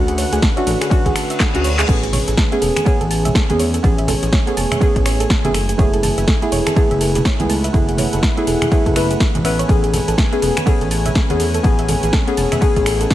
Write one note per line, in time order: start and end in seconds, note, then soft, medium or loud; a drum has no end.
0.00 0.25 D2 loud
0.00 1.85 D3 medium
0.00 1.85 A3 medium
0.00 0.53 C#4 medium
0.00 0.53 D4 medium
0.00 0.54 F#4 medium
0.00 3.80 B4 medium
0.00 1.85 F#5 medium
0.08 0.14 G#4 medium
0.08 closed hi-hat medium
0.18 0.27 C#5 medium
0.18 open hi-hat loud
0.18 ride medium
0.18 shaker medium
0.33 0.39 D2 loud
0.33 0.36 G#4 loud
0.33 closed hi-hat medium
0.33 shaker soft
0.42 0.48 A5 medium
0.42 kick loud
0.42 snare loud
0.42 ride medium
0.42 shaker soft
0.56 0.89 C#4 medium
0.56 0.89 D4 medium
0.56 0.89 F#4 medium
0.56 0.63 E5 medium
0.56 closed hi-hat soft
0.67 0.75 A1 loud
0.67 0.76 A4 medium
0.67 open hi-hat medium
0.67 ride medium
0.67 shaker medium
0.81 0.88 G#4 medium
0.81 finger snap medium
0.81 closed hi-hat medium
0.81 shaker soft
0.90 1.50 C#4 loud
0.90 1.51 D4 medium
0.90 1.52 F#4 loud
0.90 1.00 C#5 medium
0.90 kick loud
0.90 ride medium
0.90 reverse cymbal medium
0.90 shaker soft
1.06 1.12 A1 medium
1.06 1.09 G#4 loud
1.06 kick medium
1.06 closed hi-hat soft
1.16 1.21 A5 medium
1.16 finger snap medium
1.16 open hi-hat loud
1.16 ride medium
1.16 shaker medium
1.30 1.36 E5 medium
1.30 closed hi-hat medium
1.30 shaker soft
1.40 1.49 A4 medium
1.40 kick loud
1.40 snare loud
1.40 clap loud
1.40 ride medium
1.40 shaker soft
1.54 1.83 D2 medium
1.54 1.68 C#4 medium
1.54 1.68 D4 medium
1.54 1.69 F#4 medium
1.54 1.61 G#4 medium
1.54 closed hi-hat medium
1.64 1.74 C#5 medium
1.64 open hi-hat medium
1.64 ride medium
1.64 shaker medium
1.79 1.83 G#4 medium
1.79 clap medium
1.79 closed hi-hat medium
1.79 shaker soft
1.88 2.20 A1 loud
1.88 13.14 A3 medium
1.88 2.48 B3 medium
1.88 2.49 C#4 medium
1.88 5.51 C#4 medium
1.88 2.49 G#4 medium
1.88 1.98 A4 medium
1.88 7.46 G#5 medium
1.88 kick loud
1.88 crash medium
1.88 ride medium
1.88 shaker soft
2.03 2.09 G#4 medium
2.03 closed hi-hat medium
2.13 2.22 C#5 medium
2.13 open hi-hat loud
2.13 ride medium
2.13 high conga medium
2.13 low conga medium
2.13 shaker medium
2.28 2.34 A1 loud
2.28 2.37 A4 medium
2.28 closed hi-hat medium
2.28 shaker soft
2.37 2.43 A5 medium
2.37 kick loud
2.37 snare loud
2.37 ride medium
2.37 shaker soft
2.51 2.84 B3 medium
2.51 2.84 C#4 medium
2.51 2.84 G#4 medium
2.51 2.58 E5 medium
2.51 closed hi-hat soft
2.62 2.70 E1 medium
2.62 2.71 A4 medium
2.62 open hi-hat medium
2.62 ride medium
2.62 shaker medium
2.76 2.83 G#4 medium
2.76 finger snap medium
2.76 closed hi-hat medium
2.76 high conga medium
2.76 shaker soft
2.85 3.46 B3 loud
2.85 3.46 C#4 medium
2.85 3.47 G#4 loud
2.85 2.96 C#5 medium
2.85 kick loud
2.85 ride medium
2.85 shaker soft
3.01 3.30 A1 loud
3.01 3.10 A4 medium
3.01 closed hi-hat soft
3.11 3.16 A5 medium
3.11 open hi-hat loud
3.11 ride medium
3.11 shaker medium
3.25 3.31 E5 medium
3.25 closed hi-hat medium
3.25 low conga medium
3.25 shaker soft
3.35 3.44 A4 medium
3.35 kick loud
3.35 snare loud
3.35 ride medium
3.35 shaker soft
3.49 3.79 E2 medium
3.49 3.63 B3 medium
3.49 3.64 C#4 medium
3.49 3.56 G#4 medium
3.49 3.64 G#4 medium
3.49 closed hi-hat medium
3.49 high conga medium
3.59 3.69 C#5 medium
3.59 open hi-hat medium
3.59 ride medium
3.59 shaker medium
3.74 3.83 A4 medium
3.74 closed hi-hat medium
3.74 shaker soft
3.83 4.15 A1 loud
3.83 4.43 B3 medium
3.83 4.44 C#4 medium
3.83 4.44 G#4 medium
3.83 5.53 C#5 medium
3.83 3.89 A5 medium
3.83 kick loud
3.83 ride medium
3.83 shaker soft
3.98 4.05 E5 medium
3.98 closed hi-hat medium
4.08 4.17 A4 medium
4.08 open hi-hat loud
4.08 ride medium
4.08 high conga loud
4.08 low conga medium
4.08 shaker medium
4.23 4.29 A1 loud
4.23 4.29 G#4 medium
4.23 closed hi-hat medium
4.23 shaker soft
4.33 4.42 C#5 medium
4.33 kick loud
4.33 snare loud
4.33 ride medium
4.33 shaker soft
4.47 4.79 B3 medium
4.47 4.79 C#4 medium
4.47 4.79 G#4 medium
4.47 4.56 A4 medium
4.47 closed hi-hat soft
4.57 4.65 E1 loud
4.57 4.63 A5 medium
4.57 open hi-hat loud
4.57 ride medium
4.57 shaker medium
4.72 4.78 E5 medium
4.72 finger snap medium
4.72 closed hi-hat medium
4.72 high conga medium
4.72 low conga medium
4.72 shaker soft
4.80 5.41 B3 loud
4.80 5.41 C#4 medium
4.80 5.42 G#4 loud
4.80 4.91 A4 medium
4.80 kick loud
4.80 ride medium
4.80 shaker soft
4.96 5.25 A1 loud
4.96 5.02 G#4 medium
4.96 kick medium
4.96 closed hi-hat soft
5.06 5.15 C#5 medium
5.06 finger snap medium
5.06 open hi-hat loud
5.06 ride medium
5.06 shaker medium
5.20 5.30 A4 medium
5.20 closed hi-hat medium
5.20 shaker soft
5.30 5.36 A5 medium
5.30 kick loud
5.30 snare loud
5.30 ride medium
5.30 shaker soft
5.44 5.74 F#1 medium
5.44 5.53 B3 medium
5.44 5.53 C#4 medium
5.44 5.54 G#4 medium
5.44 5.51 E5 medium
5.44 closed hi-hat medium
5.44 high conga loud
5.44 low conga loud
5.54 9.41 E4 medium
5.54 5.64 A4 medium
5.54 13.14 B4 medium
5.54 finger snap medium
5.54 open hi-hat medium
5.54 ride medium
5.54 shaker medium
5.69 5.75 G#4 medium
5.69 closed hi-hat medium
5.69 shaker soft
5.78 6.10 F#1 loud
5.78 6.38 A3 medium
5.78 6.39 B3 medium
5.78 6.39 E4 medium
5.78 6.39 G#4 medium
5.78 5.88 C#5 medium
5.78 kick loud
5.78 ride medium
5.78 shaker soft
5.93 6.03 A4 medium
5.93 closed hi-hat medium
6.03 6.09 A5 medium
6.03 open hi-hat loud
6.03 ride medium
6.03 high conga loud
6.03 low conga medium
6.03 shaker medium
6.18 6.24 F#1 loud
6.18 6.24 E5 medium
6.18 closed hi-hat medium
6.18 shaker soft
6.28 6.37 A4 medium
6.28 kick loud
6.28 snare loud
6.28 ride medium
6.28 shaker soft
6.42 6.74 A3 medium
6.42 6.74 B3 medium
6.42 6.74 E4 medium
6.42 6.48 G#4 medium
6.42 6.74 G#4 medium
6.42 closed hi-hat soft
6.52 6.60 E1 medium
6.52 6.61 C#5 medium
6.52 open hi-hat loud
6.52 ride medium
6.52 shaker medium
6.67 6.76 A4 medium
6.67 finger snap medium
6.67 closed hi-hat medium
6.67 high conga medium
6.67 shaker soft
6.75 7.36 A3 loud
6.75 7.36 B3 medium
6.75 7.37 E4 medium
6.75 7.37 G#4 loud
6.75 6.82 A5 medium
6.75 kick loud
6.75 ride medium
6.75 shaker soft
6.91 7.20 F#1 loud
6.91 6.97 E5 medium
6.91 closed hi-hat soft
7.01 7.10 A4 medium
7.01 open hi-hat loud
7.01 ride medium
7.01 shaker medium
7.15 7.22 G#4 medium
7.15 closed hi-hat medium
7.15 low conga medium
7.15 shaker soft
7.25 7.35 C#5 medium
7.25 kick loud
7.25 snare loud
7.25 ride medium
7.25 shaker soft
7.39 7.69 C#2 medium
7.39 7.53 A3 medium
7.39 7.54 B3 medium
7.39 7.54 E4 medium
7.39 7.54 G#4 medium
7.39 7.49 A4 medium
7.39 closed hi-hat medium
7.39 high conga medium
7.49 9.43 F#5 loud
7.49 7.55 A5 medium
7.49 open hi-hat loud
7.49 ride medium
7.49 shaker medium
7.64 7.70 E5 medium
7.64 closed hi-hat medium
7.64 shaker soft
7.73 8.05 F#1 loud
7.73 8.33 A3 medium
7.73 8.34 B3 medium
7.73 8.34 E4 medium
7.73 8.35 G#4 medium
7.73 7.83 A4 medium
7.73 kick loud
7.73 ride medium
7.73 shaker soft
7.89 7.95 G#4 medium
7.89 closed hi-hat medium
7.98 8.08 C#5 medium
7.98 open hi-hat loud
7.98 ride medium
7.98 high conga loud
7.98 low conga medium
7.98 shaker medium
8.13 8.20 F#1 loud
8.13 8.22 A4 medium
8.13 closed hi-hat medium
8.13 shaker soft
8.23 8.28 A5 medium
8.23 kick loud
8.23 snare loud
8.23 ride medium
8.23 shaker soft
8.37 8.69 A3 medium
8.37 8.69 B3 medium
8.37 8.69 E4 medium
8.37 8.70 G#4 medium
8.37 8.44 E5 medium
8.37 closed hi-hat soft
8.47 8.55 E1 medium
8.47 8.56 A4 medium
8.47 open hi-hat loud
8.47 ride medium
8.47 shaker medium
8.62 8.68 G#4 medium
8.62 finger snap medium
8.62 closed hi-hat medium
8.62 high conga medium
8.62 low conga medium
8.62 shaker soft
8.71 8.94 A3 loud
8.71 8.94 B3 medium
8.71 8.94 E4 medium
8.71 8.94 G#4 loud
8.71 8.81 C#5 medium
8.71 kick loud
8.71 ride medium
8.71 shaker soft
8.86 9.15 F#1 loud
8.86 8.95 A4 medium
8.86 kick medium
8.86 closed hi-hat soft
8.95 9.21 A3 medium
8.95 9.21 B3 medium
8.95 9.21 E4 medium
8.95 9.21 B4 medium
8.95 9.05 E5 medium
8.95 finger snap medium
8.95 open hi-hat loud
8.95 ride medium
8.95 shaker medium
9.11 9.17 G#4 medium
9.11 closed hi-hat medium
9.11 shaker soft
9.20 9.26 A4 medium
9.20 kick loud
9.20 snare loud
9.20 ride medium
9.20 shaker soft
9.35 9.64 A1 medium
9.35 9.41 G#4 medium
9.35 closed hi-hat medium
9.35 high conga medium
9.35 low conga medium
9.44 9.67 B3 medium
9.44 13.14 C#4 medium
9.44 9.67 C#4 medium
9.44 9.67 B4 loud
9.44 9.59 E5 loud
9.44 13.14 G#5 medium
9.44 finger snap medium
9.44 open hi-hat loud
9.44 ride medium
9.44 shaker medium
9.59 9.65 C#5 loud
9.59 closed hi-hat medium
9.59 shaker soft
9.68 10.00 A1 loud
9.68 10.28 B3 medium
9.68 10.29 C#4 medium
9.68 10.30 G#4 medium
9.68 9.78 A4 medium
9.68 kick loud
9.68 ride medium
9.68 shaker soft
9.84 9.90 G#4 medium
9.84 closed hi-hat medium
9.93 9.99 A4 medium
9.93 open hi-hat loud
9.93 ride medium
9.93 high conga loud
9.93 low conga medium
9.93 shaker medium
10.08 10.15 A1 loud
10.08 10.17 A4 medium
10.08 closed hi-hat medium
10.08 shaker soft
10.18 10.23 A5 medium
10.18 kick loud
10.18 snare loud
10.18 ride medium
10.18 shaker soft
10.32 10.64 B3 medium
10.32 10.64 C#4 medium
10.32 10.65 G#4 medium
10.32 10.39 E5 medium
10.32 closed hi-hat soft
10.42 10.50 E1 loud
10.42 10.52 A4 medium
10.42 open hi-hat medium
10.42 ride medium
10.42 shaker medium
10.57 10.63 G#4 medium
10.57 finger snap medium
10.57 closed hi-hat medium
10.57 high conga medium
10.57 shaker soft
10.66 11.26 B3 loud
10.66 11.27 C#4 medium
10.66 11.27 G#4 loud
10.66 10.72 A4 medium
10.66 kick loud
10.66 ride medium
10.66 shaker soft
10.81 11.10 A1 loud
10.81 10.91 A4 medium
10.81 closed hi-hat soft
10.91 10.97 A5 medium
10.91 open hi-hat loud
10.91 ride medium
10.91 shaker medium
11.06 11.12 E5 medium
11.06 closed hi-hat medium
11.06 low conga medium
11.06 shaker soft
11.15 11.25 A4 medium
11.15 kick loud
11.15 snare loud
11.15 ride medium
11.15 shaker soft
11.30 11.59 E2 medium
11.30 11.44 B3 medium
11.30 11.44 C#4 medium
11.30 11.36 G#4 medium
11.30 11.44 G#4 medium
11.30 closed hi-hat medium
11.30 high conga medium
11.40 11.46 A4 medium
11.40 open hi-hat medium
11.40 ride medium
11.40 shaker medium
11.54 11.64 A4 medium
11.54 closed hi-hat medium
11.54 shaker soft
11.63 11.95 A1 loud
11.63 12.24 B3 medium
11.63 12.24 C#4 medium
11.63 12.25 G#4 medium
11.63 11.70 A5 medium
11.63 kick loud
11.63 ride medium
11.63 shaker soft
11.79 11.85 E5 medium
11.79 closed hi-hat medium
11.88 11.98 A4 medium
11.88 open hi-hat loud
11.88 ride medium
11.88 high conga medium
11.88 low conga medium
11.88 shaker medium
12.03 12.10 A1 loud
12.03 12.10 G#4 medium
12.03 closed hi-hat medium
12.03 shaker soft
12.13 12.19 A4 medium
12.13 kick loud
12.13 snare loud
12.13 ride medium
12.13 shaker soft
12.27 12.59 B3 medium
12.27 12.60 C#4 medium
12.27 12.60 G#4 medium
12.27 12.37 A4 medium
12.27 closed hi-hat soft
12.37 12.46 E1 loud
12.37 12.43 A5 medium
12.37 open hi-hat medium
12.37 ride medium
12.37 shaker medium
12.52 12.58 E5 medium
12.52 finger snap medium
12.52 closed hi-hat medium
12.52 high conga medium
12.52 low conga medium
12.52 shaker soft
12.61 13.14 B3 loud
12.61 13.14 C#4 medium
12.61 13.14 G#4 loud
12.61 12.71 A4 medium
12.61 kick loud
12.61 ride medium
12.61 shaker soft
12.76 13.05 A1 loud
12.76 12.83 G#4 medium
12.76 kick medium
12.76 closed hi-hat soft
12.86 12.92 A4 medium
12.86 finger snap medium
12.86 open hi-hat loud
12.86 ride medium
12.86 shaker medium
13.01 13.10 A4 medium
13.01 closed hi-hat medium
13.01 shaker soft
13.10 13.14 A5 medium
13.10 kick loud
13.10 snare loud
13.10 ride medium
13.10 shaker soft